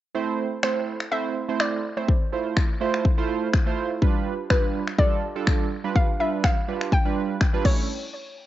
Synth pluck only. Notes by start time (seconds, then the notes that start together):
0.63 C5
1.12 E5
1.60 D5
1.97 C5
4.50 B4
4.99 D5
5.96 F5
6.20 E5
6.45 F5
6.93 G5
7.65 C#5